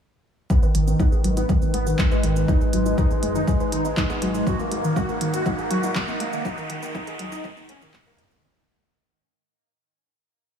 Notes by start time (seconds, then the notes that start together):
0.50 G#2 G#3 B3 D#4 B4, kick, riser, shaker
0.63 D#3 B4, shaker
0.75 G#1 D#3, closed hi-hat
0.87 D#3 B3, shaker
1.00 B3 D#4, kick, shaker
1.12 D#3 G#4, shaker
1.24 G#1 D#3 F#3, closed hi-hat
1.37 B3 D#4, closed hi-hat, shaker
1.49 D#3 G#3, kick, shaker
1.62 D#3 B3, shaker
1.74 G#1 G#3 B3, closed hi-hat
1.87 D#3, shaker
1.99 D#3 G#3, kick, clap, shaker
2.11 G#3 B4, shaker
2.23 G#1 D#3, closed hi-hat
2.36 D#3 B3, shaker
2.48 D#4, kick, shaker
2.61 G#3 G#4, shaker
2.73 G#1 F#3 G#3, closed hi-hat
2.86 G#3 D#4, shaker
2.98 G#3 D#4, kick, shaker
3.10 G#3 B3, shaker
3.23 F#1 G#3, closed hi-hat
3.35 D#3 D#4, shaker
3.47 G#3, kick, shaker
3.60 G#3 B4, shaker
3.72 G#1 D#3 D#4, closed hi-hat
3.85 G#3 B3, shaker
3.97 G#3 D#4, kick, clap, shaker
4.10 B3 G#4, shaker
4.22 G#1 F#3 G#3, closed hi-hat
4.34 G#3 D#4, shaker
4.47 G#3 F#4 A#4 F#5, kick, shaker
4.59 A#3, shaker
4.71 D#1 G#3 A#3, closed hi-hat
4.84 D#3 A#3, shaker
4.96 G#3 F#4, kick, shaker
5.09 A#3 A#4, shaker
5.21 D#1 D#3 A#3, closed hi-hat
5.34 A#3 F#4, closed hi-hat, shaker
5.46 A#3 D#4, kick, shaker
5.58 A#3 G#4, shaker
5.71 D#1 F#3 F#4, closed hi-hat
5.83 A#3 D#4, shaker
5.95 G#3 A#3, kick, clap, shaker
6.08 A#3 D#4, shaker
6.20 D#1 G#3 A#3, closed hi-hat
6.33 D#3 A#3, shaker
6.45 G#3 D#4 G#4, kick, shaker
6.58 D#3 A#4, shaker
6.70 D#1 D#3, closed hi-hat
6.82 D#3 A#3, shaker
6.95 D#4, kick, shaker
7.07 D#3 G#4, closed hi-hat, shaker
7.19 C#2 D#3 F#3, closed hi-hat
7.32 D#4, shaker
7.44 D#3 G#3, kick, shaker
7.57 D#3 A#3, shaker
7.69 D#1 G#3 C#4, closed hi-hat
7.82 D#3, shaker
7.94 D#3 G#3, kick, clap, shaker
8.06 A#3 A#4, shaker
8.19 D#1 D#3, closed hi-hat
8.31 D#3 A#3, shaker